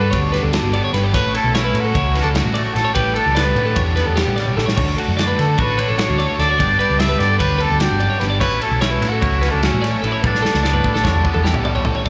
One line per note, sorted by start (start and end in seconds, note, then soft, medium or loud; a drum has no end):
0.00 0.93 G2 medium
0.00 0.51 D3 medium
0.00 0.10 G3 medium
0.00 0.11 B3 medium
0.00 0.74 B3 medium
0.00 0.12 D4 medium
0.00 0.32 D4 medium
0.00 0.97 F#4 medium
0.00 0.13 G4 medium
0.00 0.12 A4 medium
0.00 0.18 B4 loud
0.11 0.38 D2 medium
0.11 0.34 G3 medium
0.11 0.33 B3 medium
0.11 0.33 D4 medium
0.11 0.31 G4 medium
0.11 0.32 C#5 medium
0.11 kick loud
0.11 ride loud
0.32 0.52 G3 medium
0.32 0.53 B3 medium
0.32 1.12 D4 medium
0.32 0.54 D4 loud
0.32 0.55 G4 medium
0.32 0.43 B4 medium
0.32 snare soft
0.32 ride medium
0.43 0.60 D2 medium
0.43 0.53 A4 medium
0.53 1.11 D3 medium
0.53 0.92 G3 medium
0.53 0.74 B3 medium
0.53 0.73 D4 medium
0.53 0.73 F#4 medium
0.53 0.71 G4 medium
0.53 snare loud
0.53 ride medium
0.63 0.80 G1 medium
0.73 1.12 B3 medium
0.73 0.93 B3 medium
0.73 0.93 D4 medium
0.73 0.94 G4 medium
0.73 0.84 D5 medium
0.73 ride medium
0.84 0.93 C#5 medium
0.93 1.14 G1 medium
0.93 1.12 G2 medium
0.93 1.12 G3 loud
0.93 1.13 B3 loud
0.93 1.13 D4 medium
0.93 1.14 G4 loud
0.93 1.04 B4 medium
0.93 snare soft
0.93 ride medium
1.04 1.14 D5 medium
1.12 1.31 A1 loud
1.12 2.35 A2 medium
1.12 1.53 A3 medium
1.12 1.35 C#4 medium
1.12 1.34 F#4 medium
1.12 1.34 A4 loud
1.12 1.33 B4 loud
1.12 1.34 C#5 loud
1.12 kick loud
1.12 ride loud
1.34 1.52 C#4 medium
1.34 1.95 E4 medium
1.34 1.54 F#4 medium
1.34 1.55 A4 medium
1.34 1.54 A4 medium
1.34 1.56 A4 loud
1.34 ride medium
1.44 1.69 B1 medium
1.53 1.76 A3 medium
1.53 1.75 C#4 medium
1.53 2.15 C#4 medium
1.53 1.82 E4 loud
1.53 1.74 F#4 medium
1.53 1.73 A4 medium
1.53 1.64 C#5 medium
1.53 snare loud
1.53 ride loud
1.65 1.85 B4 medium
1.74 1.91 A2 medium
1.74 2.93 F#3 medium
1.74 1.94 A3 medium
1.74 1.94 C#4 medium
1.74 1.94 F#4 medium
1.74 1.96 A4 medium
1.74 ride medium
1.80 2.21 F#4 loud
1.85 1.95 A4 medium
1.94 2.20 C#2 loud
1.94 2.17 A3 medium
1.94 2.15 C#4 medium
1.94 2.94 E4 medium
1.94 2.14 F#4 loud
1.94 2.14 A4 medium
1.94 2.15 C#5 medium
1.94 kick loud
1.94 ride loud
2.15 2.34 A3 medium
2.15 2.94 C#4 medium
2.15 2.34 C#4 medium
2.15 2.34 F#4 loud
2.15 2.36 A4 medium
2.15 2.25 B4 medium
2.15 snare soft
2.15 ride medium
2.22 2.42 C#2 medium
2.22 2.28 D4 medium
2.22 2.34 A4 medium
2.34 2.75 A2 medium
2.34 2.74 A3 medium
2.34 2.56 C#4 medium
2.34 2.55 F#4 loud
2.34 2.76 F#4 medium
2.34 2.55 F#4 medium
2.34 2.54 A4 medium
2.34 snare loud
2.34 ride loud
2.44 2.61 A1 medium
2.54 3.41 A3 medium
2.54 2.74 C#4 medium
2.54 2.75 F#4 medium
2.54 2.77 A4 medium
2.54 2.64 D5 medium
2.54 ride medium
2.64 2.74 C#5 medium
2.74 2.84 A1 medium
2.74 2.95 A2 medium
2.74 2.95 A3 medium
2.74 2.95 C#4 medium
2.74 2.95 F#4 loud
2.74 2.84 A4 medium
2.74 2.93 A4 loud
2.74 2.97 A4 medium
2.74 snare soft
2.74 ride medium
2.85 2.94 C#5 medium
2.93 3.12 A1 loud
2.93 3.36 A2 medium
2.93 3.57 A2 medium
2.93 3.35 E3 loud
2.93 3.17 G3 loud
2.93 3.15 C#4 medium
2.93 3.15 G4 loud
2.93 3.14 G4 loud
2.93 3.16 B4 loud
2.93 kick loud
2.93 ride loud
3.14 3.35 G3 medium
3.14 3.36 C#4 medium
3.14 4.21 D4 medium
3.14 3.37 G4 medium
3.14 3.37 A4 loud
3.14 3.36 A4 medium
3.14 ride medium
3.26 3.51 C#2 medium
3.35 3.57 E3 medium
3.35 3.56 G3 medium
3.35 3.97 B3 medium
3.35 3.55 C#4 medium
3.35 3.55 G4 medium
3.35 3.81 B4 medium
3.35 3.45 D5 medium
3.35 snare loud
3.35 ride loud
3.45 3.66 B4 medium
3.55 3.73 A2 medium
3.55 3.98 A2 medium
3.55 5.37 D3 medium
3.55 3.75 E3 medium
3.55 3.76 G3 medium
3.55 3.77 C#4 medium
3.55 3.77 G4 medium
3.55 ride medium
3.65 3.76 A4 medium
3.76 4.01 E2 loud
3.76 3.98 E3 medium
3.76 3.97 G3 medium
3.76 3.96 C#4 medium
3.76 3.96 G4 medium
3.76 3.95 C#5 medium
3.76 kick loud
3.76 ride loud
3.96 4.39 A2 medium
3.96 4.16 E3 medium
3.96 4.17 G3 medium
3.96 4.76 B3 medium
3.96 4.17 C#4 medium
3.96 4.18 G4 medium
3.96 4.06 B4 medium
3.96 snare soft
3.96 ride medium
4.06 4.24 E2 medium
4.06 4.17 A4 medium
4.16 4.58 E2 medium
4.16 4.56 E3 medium
4.16 4.38 G3 medium
4.16 4.37 C#4 medium
4.16 4.37 G4 medium
4.16 4.35 G4 medium
4.16 snare loud
4.16 ride loud
4.27 4.44 A1 medium
4.36 4.56 G3 medium
4.36 4.79 G3 medium
4.36 4.57 C#4 medium
4.36 4.58 G4 medium
4.36 4.46 D5 medium
4.36 snare soft
4.36 ride medium
4.46 4.57 C#5 medium
4.46 high tom medium
4.56 4.78 A1 medium
4.56 4.76 A2 medium
4.56 4.78 A2 medium
4.56 4.76 E3 medium
4.56 4.77 G3 loud
4.56 4.77 C#4 loud
4.56 4.77 G4 loud
4.56 4.67 A4 medium
4.56 snare medium
4.66 4.75 C#5 medium
4.66 snare medium
4.76 4.94 D2 loud
4.76 6.38 D2 medium
4.76 5.16 D3 medium
4.76 5.00 A3 medium
4.76 4.99 D4 medium
4.76 4.98 F#4 loud
4.76 4.97 C#5 medium
4.76 kick loud
4.76 crash loud
4.97 5.17 A3 medium
4.97 5.19 D4 medium
4.97 5.20 F#4 medium
4.97 5.59 F#4 medium
4.97 5.16 A4 medium
4.97 ride medium
5.08 5.33 F#2 medium
5.17 5.38 D3 medium
5.17 5.38 A3 medium
5.17 5.38 D4 medium
5.17 5.78 D4 medium
5.17 5.36 F#4 medium
5.17 5.27 D5 medium
5.17 snare loud
5.17 ride medium
5.27 5.47 B4 medium
5.37 6.59 D3 medium
5.37 5.56 D3 medium
5.37 5.57 A3 medium
5.37 5.58 D4 medium
5.37 5.59 F#4 medium
5.37 5.61 A4 medium
5.37 snare soft
5.37 ride medium
5.47 5.58 A4 medium
5.58 5.84 A1 loud
5.58 5.79 D3 medium
5.58 5.78 A3 medium
5.58 5.78 D4 medium
5.58 6.61 F#4 medium
5.58 5.77 F#4 medium
5.58 5.81 B4 loud
5.58 5.77 C#5 medium
5.58 kick loud
5.58 ride medium
5.78 5.97 D3 medium
5.78 5.98 A3 medium
5.78 5.99 D4 medium
5.78 6.57 D4 medium
5.78 6.00 F#4 medium
5.78 5.88 B4 medium
5.78 6.38 C#5 loud
5.78 ride medium
5.88 6.06 A1 medium
5.88 5.98 A4 medium
5.98 6.59 A2 medium
5.98 6.38 D3 medium
5.98 6.19 A3 medium
5.98 6.19 D4 loud
5.98 6.19 F#4 medium
5.98 6.18 F#4 medium
5.98 snare loud
5.98 ride loud
6.10 6.26 D2 medium
6.18 6.58 A3 medium
6.18 6.38 A3 medium
6.18 6.39 D4 medium
6.18 6.41 F#4 medium
6.18 6.28 D5 medium
6.18 ride medium
6.28 6.39 C#5 medium
6.39 6.61 D2 medium
6.39 6.58 D2 medium
6.39 6.58 D3 medium
6.39 6.59 A3 medium
6.39 6.59 D4 medium
6.39 6.61 F#4 loud
6.39 6.49 A4 medium
6.39 6.77 D5 loud
6.39 snare soft
6.39 ride medium
6.49 6.58 C#5 medium
6.58 6.76 G1 loud
6.58 7.80 G2 medium
6.58 6.98 G3 medium
6.58 8.39 B3 medium
6.58 6.80 B3 medium
6.58 6.79 D4 medium
6.58 6.98 D4 medium
6.58 6.78 G4 medium
6.58 6.79 G4 medium
6.58 6.79 D5 loud
6.58 kick loud
6.58 ride loud
6.79 6.99 B3 soft
6.79 6.99 D4 medium
6.79 7.00 G4 medium
6.79 7.40 G4 medium
6.79 6.99 B4 medium
6.79 7.01 D5 loud
6.79 ride medium
6.90 7.15 C#2 medium
6.99 7.21 G3 medium
6.99 7.20 B3 medium
6.99 7.59 D4 medium
6.99 7.19 D4 medium
6.99 7.18 G4 medium
6.99 7.08 D5 medium
6.99 7.20 E5 loud
6.99 snare loud
6.99 ride loud
7.09 7.29 B4 medium
7.19 7.37 G2 medium
7.19 8.41 D3 medium
7.19 7.38 G3 medium
7.19 7.39 B3 medium
7.19 7.39 D4 medium
7.19 7.41 G4 medium
7.19 7.38 D5 loud
7.19 snare soft
7.19 ride medium
7.29 7.39 A4 medium
7.38 7.65 D2 loud
7.38 7.60 G3 medium
7.38 7.60 B3 medium
7.38 7.59 D4 medium
7.38 8.39 G4 medium
7.38 7.58 G4 medium
7.38 7.62 B4 loud
7.38 7.58 C#5 medium
7.38 kick loud
7.38 ride loud
7.59 7.78 G3 medium
7.59 7.79 B3 medium
7.59 7.80 D4 medium
7.59 8.39 D4 medium
7.59 7.80 G4 loud
7.59 7.79 A4 loud
7.59 7.69 B4 medium
7.59 ride medium
7.69 7.87 D2 medium
7.69 7.80 A4 medium
7.79 8.01 E2 medium
7.79 8.19 G3 medium
7.79 8.00 B3 medium
7.79 7.99 D4 medium
7.79 8.00 F#4 medium
7.79 8.23 G4 medium
7.79 7.98 G4 medium
7.79 snare loud
7.79 ride loud
7.91 8.08 G1 medium
7.99 8.21 F#2 medium
7.99 8.19 B3 medium
7.99 8.20 D4 medium
7.99 8.20 G4 medium
7.99 8.09 D5 medium
7.99 ride medium
8.10 8.20 C#5 medium
8.20 8.41 G1 medium
8.20 8.42 G2 medium
8.20 8.40 G3 medium
8.20 8.40 B3 medium
8.20 8.40 D4 loud
8.20 8.40 G4 loud
8.20 8.29 B4 medium
8.20 snare soft
8.20 ride medium
8.30 8.40 D5 medium
8.40 8.58 A1 loud
8.40 9.61 A2 medium
8.40 9.01 F#3 medium
8.40 8.82 A3 medium
8.40 9.83 A3 medium
8.40 8.63 C#4 medium
8.40 8.81 C#4 medium
8.40 8.63 E4 medium
8.40 8.62 F#4 medium
8.40 8.61 A4 loud
8.40 8.60 B4 loud
8.40 8.61 C#5 loud
8.40 kick loud
8.40 ride loud
8.61 8.82 C#4 medium
8.61 9.22 E4 medium
8.61 8.83 F#4 medium
8.61 8.81 A4 medium
8.61 8.84 A4 medium
8.61 8.83 A4 medium
8.61 ride medium
8.72 8.97 B1 medium
8.81 9.05 A3 medium
8.81 9.40 C#4 medium
8.81 9.03 C#4 medium
8.81 9.10 E4 loud
8.81 9.02 F#4 medium
8.81 9.02 A4 medium
8.81 8.91 C#5 loud
8.81 snare loud
8.81 ride medium
8.91 9.12 B4 medium
9.02 9.18 A2 medium
9.02 10.21 F#3 medium
9.02 9.22 A3 medium
9.02 9.22 C#4 medium
9.02 9.23 F#4 medium
9.02 9.24 A4 medium
9.02 snare soft
9.02 ride medium
9.09 9.51 F#4 medium
9.09 9.22 A4 medium
9.21 9.47 C#2 loud
9.21 9.45 A3 medium
9.21 9.43 C#4 medium
9.21 10.27 E4 medium
9.21 9.42 F#4 medium
9.21 9.42 A4 medium
9.21 9.42 C#5 medium
9.21 kick loud
9.21 ride medium
9.41 9.62 A3 medium
9.41 10.20 C#4 medium
9.41 9.62 C#4 medium
9.41 9.63 F#4 medium
9.41 9.65 A4 medium
9.41 9.51 B4 medium
9.41 snare soft
9.41 ride medium
9.49 9.63 D4 medium
9.49 9.62 A4 medium
9.54 9.70 C#2 medium
9.62 10.02 A2 medium
9.62 10.04 A3 medium
9.62 9.85 C#4 medium
9.62 10.01 C#4 medium
9.62 9.83 F#4 medium
9.62 9.84 F#4 medium
9.62 9.83 A4 medium
9.62 snare loud
9.62 ride medium
9.73 9.90 A1 medium
9.82 10.25 A3 medium
9.82 10.05 F#4 medium
9.82 10.07 A4 medium
9.82 9.92 D5 medium
9.82 snare soft
9.82 ride medium
9.87 10.04 C#4 medium
9.92 10.01 C#5 medium
10.02 10.12 A1 medium
10.02 10.23 A2 medium
10.02 10.24 A3 medium
10.02 10.23 C#4 medium
10.02 10.12 A4 medium
10.02 ride medium
10.06 10.27 E4 medium
10.06 10.24 F#4 medium
10.06 10.26 A4 loud
10.12 10.22 C#5 medium
10.22 10.40 A1 medium
10.22 10.64 A2 medium
10.22 10.85 A2 medium
10.22 10.65 E3 medium
10.22 10.46 G3 medium
10.22 11.65 G3 medium
10.22 10.45 C#4 medium
10.22 10.43 B4 medium
10.22 kick loud
10.26 10.65 B3 medium
10.26 11.67 D4 medium
10.26 10.46 D4 medium
10.26 10.44 E4 medium
10.26 10.43 A4 loud
10.35 snare medium
10.42 10.63 C#4 medium
10.42 10.64 E4 medium
10.42 10.63 A4 medium
10.42 10.65 A4 medium
10.42 snare medium
10.47 10.62 G3 medium
10.54 10.79 C#2 medium
10.54 snare medium
10.63 10.86 G3 medium
10.63 11.25 B3 medium
10.63 10.85 C#4 medium
10.63 10.84 E4 medium
10.63 10.84 A4 medium
10.63 10.73 D5 medium
10.63 snare medium
10.73 10.94 B4 medium
10.73 mid tom medium
10.84 11.01 A2 medium
10.84 11.26 A2 medium
10.84 12.09 D3 medium
10.84 11.26 E3 medium
10.84 11.03 G3 medium
10.84 11.04 C#4 medium
10.84 11.05 E4 medium
10.84 11.06 A4 medium
10.84 kick medium
10.94 11.04 A4 medium
10.94 snare medium
11.04 11.30 E2 loud
11.04 11.25 G3 medium
11.04 11.24 C#4 medium
11.04 11.24 E4 medium
11.04 11.23 A4 medium
11.04 11.24 C#5 medium
11.04 kick loud
11.04 snare medium
11.14 mid tom medium
11.24 11.67 A2 medium
11.24 11.66 E3 medium
11.24 11.42 G3 medium
11.24 12.04 B3 medium
11.24 11.44 C#4 medium
11.24 11.45 E4 medium
11.24 11.45 A4 medium
11.24 11.34 B4 medium
11.24 kick medium
11.34 11.52 E2 medium
11.34 11.43 A4 medium
11.34 mid tom medium
11.44 11.86 E2 medium
11.44 11.66 G3 medium
11.44 11.66 C#4 medium
11.44 11.65 E4 medium
11.44 11.65 G4 medium
11.44 11.63 A4 medium
11.44 snare medium
11.54 11.72 A1 medium
11.54 floor tom medium
11.65 12.06 G3 medium
11.65 11.84 G3 medium
11.65 11.85 C#4 medium
11.65 11.86 E4 medium
11.65 11.86 A4 medium
11.65 11.75 D5 medium
11.65 floor tom loud
11.75 11.85 C#5 medium
11.75 floor tom medium
11.85 11.94 A1 medium
11.85 12.04 A2 medium
11.85 12.06 A2 medium
11.85 12.05 E3 medium
11.85 12.05 G3 loud
11.85 12.05 C#4 medium
11.85 12.05 E4 medium
11.85 11.95 A4 medium
11.85 12.06 A4 loud
11.85 floor tom loud
11.95 12.05 C#5 medium
11.95 floor tom medium
12.05 12.09 D2 medium
12.05 12.09 D5 medium
12.05 kick loud
12.05 crash medium